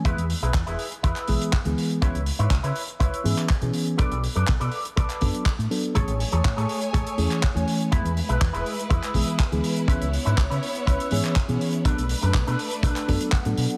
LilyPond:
<<
  \new Staff \with { instrumentName = "Clean electric guitar" } { \time 4/4 \key cis \phrygian \tempo 4 = 122 <e' gis' b'>8 r16 <e' gis' b'>16 r16 <e' gis' b'>16 r8 <e' gis' b'>4 r4 | <e' b' cis''>8 r16 <e' b' cis''>16 r16 <e' b' cis''>16 r8 <e' b' cis''>4 r4 | <a' b' d''>8 r16 <a' b' d''>16 r16 <a' b' d''>16 r8 <a' b' d''>4 r4 | <gis' a' cis''>8 r16 <gis' a' cis''>16 r16 <gis' a' cis''>16 r8 <gis' a' cis''>4 r4 |
<e' gis' b'>8 r16 <e' gis' b'>16 r16 <e' gis' b'>16 r8 <e' gis' b'>4 r4 | <cis' e' b'>8 r16 <cis' e' b'>16 r16 <cis' e' b'>16 r8 <cis' e' b'>4 r4 | <d' a' b'>8 r16 <d' a' b'>16 r16 <d' a' b'>16 r8 <d' a' b'>4 fis''4 | }
  \new Staff \with { instrumentName = "String section" } { \time 4/4 \key cis \phrygian << { r1 | r1 | r1 | <a cis''>1 |
<gis b'>1 | <b cis''>1 | <a b'>1 | } \\ { r1 | r1 | r1 | gis''1 |
e'1~ | e'1 | d'1 | } >> }
  \new Staff \with { instrumentName = "Reed electric piano" } { \time 4/4 \key cis \phrygian <e gis b gis'>16 r2 r16 <e gis b gis'>8 r16 <e gis b gis'>8. | <e b cis'>16 r2 r16 <e b cis' gis'>8 r16 <e b cis' gis'>8. | <fis b d'>16 r2 r16 <fis b d' a'>8 r8 <fis b d' a'>8 | <e a cis' gis'>16 r2 r16 <e a cis' gis'>8 r16 <e a cis' gis''>8. |
<e gis b gis'>16 r2 r16 <e gis b gis'>8 r16 <e gis b gis'>8. | gis'16 r2 r16 <e b cis' gis'>8 r16 <e b cis' gis'>8. | r2 r8 <fis b d' a'>8 r16 <fis b d' a'>8. | }
  \new Staff \with { instrumentName = "Fingered electric bass" } { \clef bass \time 4/4 \key cis \phrygian e,16 e,16 r16 b,,16 e,16 e,,16 r8 e,16 r16 b,,16 r8 d,16 r8 | cis,16 cis,16 r16 gis,16 cis,16 cis16 r8 cis,16 r16 gis,16 r8 b,16 r8 | b,,16 b,,16 r16 fis,16 b,,16 b,16 r8 b,,16 r16 fis,16 r8 a,16 r8 | a,,16 a,,16 r16 e,16 a,,16 a,16 r8 a,,16 r16 e,16 r8 e,16 r8 |
e,16 e,16 r16 b,,16 e,16 e,,16 r8 e,16 r16 b,,16 r8 d,16 r8 | cis,16 cis,16 r16 gis,16 cis,16 cis16 r8 cis,16 r16 gis,16 r8 b,16 r8 | b,,16 b,,16 r16 fis,16 b,,16 b,16 r8 b,,16 r16 fis,16 r8 a,16 b,16 r16 | }
  \new DrumStaff \with { instrumentName = "Drums" } \drummode { \time 4/4 <hh bd>16 hh16 hho16 hh16 <hc hh bd>16 hh16 hho16 hh16 <hh bd>16 <hc hh>16 <hho bd>16 hh16 <hc hh bd>16 hh16 hho16 hh16 | <hh bd>16 hh16 hho16 hh16 <hc hh bd>16 hh16 hho16 hh16 <hh bd>16 hh16 hho16 <hc hh>16 <hc hh bd>16 hh16 hho16 hh16 | <hh bd>16 hh16 hho16 hh16 <hc hh bd>16 hh16 hho16 hh16 <hh bd>16 <hc hh>16 <hho bd>16 hh16 <hc hh bd>16 hh16 hho16 hh16 | <hh bd>16 hh16 hho16 hh16 <hc hh bd>16 hh16 hho16 hh16 <hh bd>16 hh16 hho16 <hc hh>16 <hc hh bd>16 hh16 hho16 hh16 |
<hh bd>16 hh16 hho16 hh16 <hc hh bd>16 hh16 hho16 hh16 <hh bd>16 <hc hh>16 <hho bd>16 hh16 <hc hh bd>16 hh16 hho16 hh16 | <hh bd>16 hh16 hho16 hh16 <hc hh bd>16 hh16 hho16 hh16 <hh bd>16 hh16 hho16 <hc hh>16 <hc hh bd>16 hh16 hho16 hh16 | <hh bd>16 hh16 hho16 hh16 <hc hh bd>16 hh16 hho16 hh16 <hh bd>16 <hc hh>16 <hho bd>16 hh16 <hc hh bd>16 hh16 hho16 hh16 | }
>>